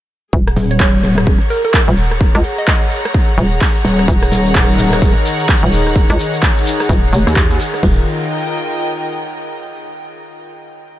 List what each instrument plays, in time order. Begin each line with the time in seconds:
0.33 fm bass D#1, string section G#4, kick
0.47 string section F#5, cross-stick, closed hi-hat
0.56 wobble bass D#1, open hi-hat
0.71 synth pluck C#5, closed hi-hat
0.80 synth pluck C#5, string section C#5, kick, clap
0.94 closed hi-hat
1.03 wobble bass D#1, open hi-hat
1.18 cross-stick, closed hi-hat
1.23 string section A#5, kick
1.41 closed hi-hat
1.50 synth pluck A#4, open hi-hat
1.65 synth pluck A#4, closed hi-hat
1.74 kick, clap
1.88 fm bass D#1, closed hi-hat
1.97 open hi-hat
2.11 cross-stick, closed hi-hat
2.21 kick
2.35 fm bass C#2, cross-stick, closed hi-hat
2.44 open hi-hat
2.58 synth pluck D#5, closed hi-hat
2.68 kick, clap
2.82 closed hi-hat
2.91 open hi-hat
3.05 cross-stick, closed hi-hat
3.14 kick
3.29 closed hi-hat
3.38 fm bass D#1, open hi-hat
3.52 closed hi-hat
3.61 kick, clap
3.76 closed hi-hat
3.85 wobble bass D#1, open hi-hat
3.99 cross-stick, closed hi-hat
4.08 fm bass D#1, analog synth pad D#3 D#4 A#4 F#5, kick, shekere
4.22 cross-stick, closed hi-hat, shekere
4.32 wobble bass D#1, open hi-hat, shekere
4.46 closed hi-hat, shekere
4.55 kick, clap, shekere
4.69 closed hi-hat, shekere
4.78 wobble bass D#1, open hi-hat, shekere
4.92 cross-stick, closed hi-hat, shekere
5.02 kick, shekere
5.16 closed hi-hat
5.25 open hi-hat, shekere
5.40 closed hi-hat, shekere
5.49 kick, clap, shekere
5.63 fm bass D#1, closed hi-hat
5.72 open hi-hat, shekere
5.87 cross-stick, closed hi-hat, shekere
5.95 analog synth pad G#4, kick, shekere
6.10 fm bass C#2, cross-stick, closed hi-hat, shekere
6.19 open hi-hat, shekere
6.34 closed hi-hat, shekere
6.43 kick, clap, shekere
6.57 closed hi-hat, shekere
6.66 open hi-hat, shekere
6.80 cross-stick, closed hi-hat, shekere
6.89 fm bass D#1, kick, shekere
7.04 closed hi-hat
7.13 fm bass F1, open hi-hat, shekere
7.27 wobble bass D#2, closed hi-hat, shekere
7.36 kick, clap, shekere
7.51 closed hi-hat
7.60 open hi-hat, shekere
7.74 cross-stick, closed hi-hat, shekere
7.83 fm bass D#1, analog synth pad D#3 D#4 A#4 G5, string section F4, kick, crash
7.92 string section A#4
7.99 string section D#5
8.05 string section G5